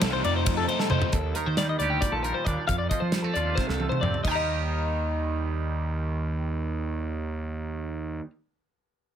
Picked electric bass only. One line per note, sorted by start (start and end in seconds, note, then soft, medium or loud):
0.02 0.21 C2 loud
0.25 0.44 F2 medium
0.46 0.65 F2 loud
0.91 1.00 F2 loud
1.13 1.32 D#2 medium
1.47 1.75 D#3 medium
1.80 1.99 D2 medium
2.12 2.31 A#1 medium
2.46 2.56 D#2 medium
2.68 2.88 F2 medium
3.02 3.30 F3 medium
3.36 3.55 D#2 medium
3.69 3.88 C2 medium
4.02 4.12 F2 medium
4.25 8.19 D#2 medium